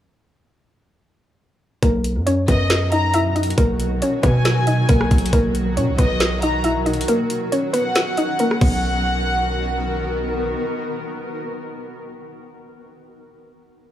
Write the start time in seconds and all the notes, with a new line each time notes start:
1.83 B1 B2 D#3 F#3 A#3 F#4 A#4, kick, closed hi-hat
2.04 closed hi-hat
2.16 F#2
2.26 C#4 C#5, closed hi-hat
2.48 F#2 B3 B4 D#5, kick, closed hi-hat
2.70 snare, closed hi-hat
2.92 D#4 D#5 A#5, closed hi-hat
3.14 E4 E5, closed hi-hat
3.36 D#4 D#5, closed hi-hat
3.43 closed hi-hat
3.50 closed hi-hat
3.58 B1 A#3 A#4, kick, closed hi-hat
3.80 closed hi-hat
4.02 C#4 C#5, closed hi-hat
4.23 B2 B3 B4 G#5, kick, closed hi-hat
4.45 snare, closed hi-hat
4.67 D#4 D#5, closed hi-hat
4.89 B1 A#3 A#4, kick, closed hi-hat
5.01 cross-stick
5.11 B1, kick, closed hi-hat
5.18 closed hi-hat
5.26 closed hi-hat
5.33 B1 A#3 A#4, kick, closed hi-hat
5.55 closed hi-hat
5.77 B2 C#4 C#5, closed hi-hat
5.88 B1
5.98 B1 B3 B4 D#5, kick, closed hi-hat
6.20 snare, closed hi-hat
6.42 D#4 D#5 A#5, closed hi-hat
6.64 E4 E5, closed hi-hat
6.86 D#4 D#5, closed hi-hat
6.94 closed hi-hat
7.01 closed hi-hat
7.08 A#3 C#4 A#4, closed hi-hat
7.30 closed hi-hat
7.52 C#4 C#5, closed hi-hat
7.73 B3 B4 F#5, closed hi-hat
7.95 snare, closed hi-hat
8.17 D#4 D#5, closed hi-hat
8.39 A#3 A#4, closed hi-hat
8.51 cross-stick
8.61 B1 D#3 B3 F#4 A#4 F#5, kick, crash